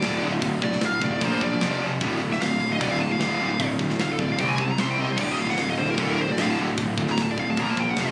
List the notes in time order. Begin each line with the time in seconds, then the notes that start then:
Already playing: D2 A2 D3 A3 F4 D5
0.02 D1 D2 A2 D3, snare, open hi-hat
0.22 D1 D2 A2 D3 A3 F4
0.33 D2 A2
0.42 D1 D2 A2 D3 A3 F4, kick, open hi-hat
0.62 D1 D2 A2 D5, kick
0.72 D2 A2, snare
0.81 D1 D2 A2 F5, snare, open hi-hat
1.02 D1 D2 A2 D5, kick
1.11 D2 A2
1.21 A#1 A#2 F3 A#3, kick, open hi-hat
1.25 C5
1.41 A#2 F3 D5, kick
1.53 A#2 F3
1.61 F1 F2 C3 F3, snare, open hi-hat
1.81 F1 F2 C3 F3
1.92 F2 C3
2.00 D1 D2 A2 D3, kick, open hi-hat
2.05 A3 F4
2.20 D1 D2 A2
2.30 D2 A2 E5, snare
2.40 D1 D2 A2 F5, snare, open hi-hat
2.60 D1 D2 A2
2.70 D2 A2 D#5
2.79 D1 D2 A2 D3 D5, kick, open hi-hat
2.91 F5
3.00 D2 A2 A5
3.09 D2 A2 F5
3.19 D1 D2 A2 D3, snare, open hi-hat
3.40 D1 D2 A2 D3 A3 F4
3.44 D2
3.51 D2 A2
3.60 D1 D2 A2 D3 A3, kick, open hi-hat
3.64 F4
3.79 D1 D2 A2, kick
3.90 D2 A2, snare
3.99 D1 D2 A2 F5, snare, open hi-hat
4.12 A4
4.19 D1 D2 A2 D5, kick
4.29 D2 A2 F5
4.39 C2 C3 G3 C4 G5, kick, open hi-hat
4.49 G#5
4.58 C3 G3 A5, kick
4.68 C3 G3 A#5
4.78 C2 C3 G3 C4 C6, snare, open hi-hat
4.84 C4
4.91 G5
4.97 C2 C3 G3 C4 D#5
5.07 C3 G3
5.12 D2 C5
5.17 D1 A2 D3 D5, kick, crash
5.21 A3 F4
5.32 D#5
5.38 D1 D2 A2 F5
5.47 D2 A2 F#5, snare
5.57 D1 D2 A2 F5, snare, open hi-hat
5.70 D#5
5.77 D1 D2 A2 C5
5.88 D2 A2 A#4
5.97 D1 D2 A2 D3 A4, kick, open hi-hat
6.11 A#4
6.18 D2 A2 C5
6.28 D2 A2 D5
6.38 D1 D2 A2 D3, snare, open hi-hat
6.42 F5
6.50 A5
6.58 D1 D2 A2 D3 A3 F4
6.64 D2
6.68 D2 A2
6.77 D1 D2 A2 D3 A3, kick, open hi-hat
6.82 F4
6.97 D1 D2 A2, kick
7.07 D2 A2, snare
7.12 A#5
7.17 D1 D2 A2, snare, open hi-hat
7.22 A5
7.30 D5
7.38 D1 D2 A2 F5, kick
7.50 D2 A2 A5
7.57 A#1 A#2 F3 A#3 A#5, kick, open hi-hat
7.71 A5
7.77 A#2 F3 G5, kick
7.89 A#2 F3 F#5
7.96 F1, snare, open hi-hat
8.00 F2 C3 F3 F5
8.07 D#5